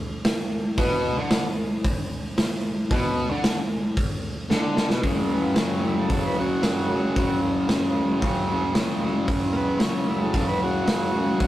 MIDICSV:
0, 0, Header, 1, 4, 480
1, 0, Start_track
1, 0, Key_signature, 3, "minor"
1, 0, Tempo, 531915
1, 698, Time_signature, 4, 2, 24, 8
1, 10351, End_track
2, 0, Start_track
2, 0, Title_t, "Transistor combo organ"
2, 0, Program_c, 0, 18
2, 4776, Note_on_c, 0, 58, 68
2, 4800, Note_off_c, 0, 58, 0
2, 4816, Note_on_c, 0, 59, 85
2, 5031, Note_off_c, 0, 59, 0
2, 5053, Note_on_c, 0, 61, 76
2, 5269, Note_off_c, 0, 61, 0
2, 5283, Note_on_c, 0, 64, 85
2, 5383, Note_off_c, 0, 64, 0
2, 5412, Note_on_c, 0, 69, 78
2, 5629, Note_off_c, 0, 69, 0
2, 5651, Note_on_c, 0, 71, 81
2, 5747, Note_off_c, 0, 71, 0
2, 5768, Note_on_c, 0, 66, 93
2, 6685, Note_off_c, 0, 66, 0
2, 8594, Note_on_c, 0, 58, 73
2, 8622, Note_off_c, 0, 58, 0
2, 8629, Note_on_c, 0, 59, 108
2, 8856, Note_off_c, 0, 59, 0
2, 8861, Note_on_c, 0, 61, 91
2, 9091, Note_off_c, 0, 61, 0
2, 9107, Note_on_c, 0, 64, 88
2, 9214, Note_off_c, 0, 64, 0
2, 9222, Note_on_c, 0, 69, 86
2, 9452, Note_off_c, 0, 69, 0
2, 9458, Note_on_c, 0, 71, 81
2, 9568, Note_off_c, 0, 71, 0
2, 9599, Note_on_c, 0, 66, 105
2, 10351, Note_off_c, 0, 66, 0
2, 10351, End_track
3, 0, Start_track
3, 0, Title_t, "Distorted electric guitar"
3, 0, Program_c, 1, 30
3, 698, Note_on_c, 1, 47, 105
3, 1052, Note_off_c, 1, 47, 0
3, 1067, Note_on_c, 1, 50, 108
3, 1296, Note_off_c, 1, 50, 0
3, 2620, Note_on_c, 1, 47, 109
3, 2973, Note_off_c, 1, 47, 0
3, 2981, Note_on_c, 1, 50, 111
3, 3213, Note_off_c, 1, 50, 0
3, 4058, Note_on_c, 1, 50, 99
3, 4411, Note_off_c, 1, 50, 0
3, 4420, Note_on_c, 1, 47, 111
3, 4525, Note_on_c, 1, 42, 83
3, 4532, Note_off_c, 1, 47, 0
3, 4544, Note_on_c, 1, 49, 85
3, 4563, Note_on_c, 1, 54, 88
3, 5001, Note_off_c, 1, 42, 0
3, 5005, Note_on_c, 1, 42, 76
3, 5018, Note_off_c, 1, 49, 0
3, 5029, Note_on_c, 1, 49, 89
3, 5046, Note_off_c, 1, 54, 0
3, 5050, Note_on_c, 1, 54, 96
3, 5484, Note_off_c, 1, 42, 0
3, 5487, Note_on_c, 1, 42, 69
3, 5497, Note_off_c, 1, 49, 0
3, 5508, Note_on_c, 1, 49, 72
3, 5522, Note_off_c, 1, 54, 0
3, 5525, Note_on_c, 1, 54, 82
3, 5726, Note_off_c, 1, 54, 0
3, 5730, Note_on_c, 1, 54, 74
3, 5758, Note_off_c, 1, 49, 0
3, 5769, Note_on_c, 1, 49, 63
3, 5958, Note_off_c, 1, 42, 0
3, 5962, Note_on_c, 1, 42, 70
3, 5974, Note_off_c, 1, 49, 0
3, 5985, Note_on_c, 1, 49, 87
3, 6001, Note_off_c, 1, 54, 0
3, 6004, Note_on_c, 1, 54, 80
3, 6204, Note_off_c, 1, 54, 0
3, 6208, Note_on_c, 1, 54, 70
3, 6239, Note_off_c, 1, 49, 0
3, 6250, Note_on_c, 1, 49, 56
3, 6451, Note_off_c, 1, 42, 0
3, 6455, Note_on_c, 1, 42, 95
3, 6466, Note_off_c, 1, 49, 0
3, 6476, Note_on_c, 1, 49, 97
3, 6486, Note_off_c, 1, 54, 0
3, 6490, Note_on_c, 1, 54, 89
3, 6927, Note_off_c, 1, 42, 0
3, 6931, Note_on_c, 1, 42, 89
3, 6939, Note_off_c, 1, 49, 0
3, 6950, Note_on_c, 1, 49, 95
3, 6967, Note_off_c, 1, 54, 0
3, 6970, Note_on_c, 1, 54, 90
3, 7397, Note_off_c, 1, 42, 0
3, 7400, Note_on_c, 1, 42, 72
3, 7411, Note_off_c, 1, 49, 0
3, 7422, Note_on_c, 1, 49, 81
3, 7437, Note_off_c, 1, 54, 0
3, 7441, Note_on_c, 1, 54, 78
3, 7636, Note_off_c, 1, 54, 0
3, 7639, Note_on_c, 1, 54, 64
3, 7672, Note_off_c, 1, 49, 0
3, 7683, Note_on_c, 1, 49, 57
3, 7872, Note_off_c, 1, 42, 0
3, 7875, Note_on_c, 1, 42, 69
3, 7886, Note_off_c, 1, 49, 0
3, 7897, Note_on_c, 1, 49, 70
3, 7909, Note_off_c, 1, 54, 0
3, 7913, Note_on_c, 1, 54, 82
3, 8120, Note_off_c, 1, 54, 0
3, 8124, Note_on_c, 1, 54, 71
3, 8154, Note_off_c, 1, 49, 0
3, 8165, Note_on_c, 1, 49, 58
3, 8351, Note_off_c, 1, 42, 0
3, 8354, Note_on_c, 1, 42, 91
3, 8369, Note_off_c, 1, 49, 0
3, 8380, Note_on_c, 1, 49, 100
3, 8395, Note_off_c, 1, 54, 0
3, 8399, Note_on_c, 1, 54, 93
3, 8832, Note_off_c, 1, 42, 0
3, 8835, Note_on_c, 1, 42, 81
3, 8850, Note_off_c, 1, 49, 0
3, 8861, Note_on_c, 1, 49, 83
3, 8875, Note_off_c, 1, 54, 0
3, 8879, Note_on_c, 1, 54, 93
3, 9311, Note_off_c, 1, 42, 0
3, 9314, Note_on_c, 1, 42, 68
3, 9324, Note_off_c, 1, 49, 0
3, 9335, Note_on_c, 1, 49, 72
3, 9349, Note_off_c, 1, 54, 0
3, 9353, Note_on_c, 1, 54, 76
3, 9550, Note_off_c, 1, 54, 0
3, 9553, Note_on_c, 1, 54, 82
3, 9583, Note_off_c, 1, 49, 0
3, 9594, Note_on_c, 1, 49, 59
3, 9777, Note_off_c, 1, 42, 0
3, 9781, Note_on_c, 1, 42, 77
3, 9798, Note_off_c, 1, 49, 0
3, 9809, Note_on_c, 1, 49, 78
3, 9820, Note_off_c, 1, 54, 0
3, 9824, Note_on_c, 1, 54, 88
3, 10029, Note_off_c, 1, 54, 0
3, 10033, Note_on_c, 1, 54, 70
3, 10061, Note_off_c, 1, 49, 0
3, 10072, Note_on_c, 1, 49, 64
3, 10253, Note_off_c, 1, 42, 0
3, 10257, Note_on_c, 1, 42, 95
3, 10270, Note_off_c, 1, 49, 0
3, 10281, Note_on_c, 1, 49, 95
3, 10292, Note_off_c, 1, 54, 0
3, 10295, Note_on_c, 1, 54, 98
3, 10351, Note_off_c, 1, 42, 0
3, 10351, Note_off_c, 1, 49, 0
3, 10351, Note_off_c, 1, 54, 0
3, 10351, End_track
4, 0, Start_track
4, 0, Title_t, "Drums"
4, 224, Note_on_c, 9, 38, 122
4, 224, Note_on_c, 9, 46, 68
4, 315, Note_off_c, 9, 38, 0
4, 315, Note_off_c, 9, 46, 0
4, 699, Note_on_c, 9, 46, 65
4, 702, Note_on_c, 9, 36, 113
4, 790, Note_off_c, 9, 46, 0
4, 793, Note_off_c, 9, 36, 0
4, 1180, Note_on_c, 9, 38, 121
4, 1180, Note_on_c, 9, 46, 71
4, 1270, Note_off_c, 9, 38, 0
4, 1270, Note_off_c, 9, 46, 0
4, 1665, Note_on_c, 9, 36, 107
4, 1666, Note_on_c, 9, 46, 66
4, 1755, Note_off_c, 9, 36, 0
4, 1757, Note_off_c, 9, 46, 0
4, 2146, Note_on_c, 9, 38, 121
4, 2146, Note_on_c, 9, 46, 68
4, 2237, Note_off_c, 9, 38, 0
4, 2237, Note_off_c, 9, 46, 0
4, 2625, Note_on_c, 9, 36, 114
4, 2625, Note_on_c, 9, 46, 66
4, 2715, Note_off_c, 9, 36, 0
4, 2715, Note_off_c, 9, 46, 0
4, 3104, Note_on_c, 9, 38, 123
4, 3104, Note_on_c, 9, 46, 64
4, 3195, Note_off_c, 9, 38, 0
4, 3195, Note_off_c, 9, 46, 0
4, 3583, Note_on_c, 9, 36, 110
4, 3584, Note_on_c, 9, 46, 58
4, 3673, Note_off_c, 9, 36, 0
4, 3674, Note_off_c, 9, 46, 0
4, 4064, Note_on_c, 9, 38, 74
4, 4154, Note_off_c, 9, 38, 0
4, 4305, Note_on_c, 9, 38, 92
4, 4395, Note_off_c, 9, 38, 0
4, 4424, Note_on_c, 9, 38, 91
4, 4514, Note_off_c, 9, 38, 0
4, 4543, Note_on_c, 9, 36, 108
4, 4545, Note_on_c, 9, 46, 61
4, 4634, Note_off_c, 9, 36, 0
4, 4635, Note_off_c, 9, 46, 0
4, 5017, Note_on_c, 9, 38, 118
4, 5017, Note_on_c, 9, 46, 65
4, 5107, Note_off_c, 9, 38, 0
4, 5107, Note_off_c, 9, 46, 0
4, 5501, Note_on_c, 9, 46, 59
4, 5504, Note_on_c, 9, 36, 104
4, 5591, Note_off_c, 9, 46, 0
4, 5594, Note_off_c, 9, 36, 0
4, 5984, Note_on_c, 9, 38, 115
4, 5984, Note_on_c, 9, 46, 57
4, 6074, Note_off_c, 9, 38, 0
4, 6074, Note_off_c, 9, 46, 0
4, 6463, Note_on_c, 9, 46, 56
4, 6464, Note_on_c, 9, 36, 117
4, 6554, Note_off_c, 9, 46, 0
4, 6555, Note_off_c, 9, 36, 0
4, 6940, Note_on_c, 9, 38, 109
4, 6940, Note_on_c, 9, 46, 59
4, 7030, Note_off_c, 9, 38, 0
4, 7030, Note_off_c, 9, 46, 0
4, 7420, Note_on_c, 9, 36, 106
4, 7423, Note_on_c, 9, 46, 51
4, 7510, Note_off_c, 9, 36, 0
4, 7513, Note_off_c, 9, 46, 0
4, 7897, Note_on_c, 9, 38, 119
4, 7897, Note_on_c, 9, 46, 59
4, 7987, Note_off_c, 9, 38, 0
4, 7987, Note_off_c, 9, 46, 0
4, 8375, Note_on_c, 9, 36, 113
4, 8376, Note_on_c, 9, 46, 63
4, 8465, Note_off_c, 9, 36, 0
4, 8466, Note_off_c, 9, 46, 0
4, 8844, Note_on_c, 9, 38, 111
4, 8844, Note_on_c, 9, 46, 64
4, 8934, Note_off_c, 9, 38, 0
4, 8934, Note_off_c, 9, 46, 0
4, 9327, Note_on_c, 9, 46, 57
4, 9331, Note_on_c, 9, 36, 108
4, 9418, Note_off_c, 9, 46, 0
4, 9421, Note_off_c, 9, 36, 0
4, 9815, Note_on_c, 9, 38, 113
4, 9815, Note_on_c, 9, 46, 62
4, 9905, Note_off_c, 9, 38, 0
4, 9905, Note_off_c, 9, 46, 0
4, 10287, Note_on_c, 9, 46, 58
4, 10291, Note_on_c, 9, 36, 109
4, 10351, Note_off_c, 9, 36, 0
4, 10351, Note_off_c, 9, 46, 0
4, 10351, End_track
0, 0, End_of_file